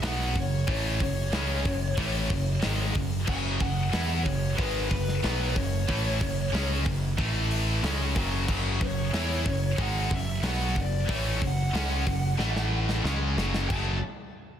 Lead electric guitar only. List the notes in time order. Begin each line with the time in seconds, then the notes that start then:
0.07 F#5
0.40 C#5
0.71 C#5
1.03 C#5
3.29 G#5
3.62 F#5
4.23 C#5
4.56 B4
4.89 B4
5.55 C#5
8.82 C#5
9.82 F#5
10.14 E5
10.47 F#5
10.81 D5
11.14 C#5
11.47 F#5
13.69 A5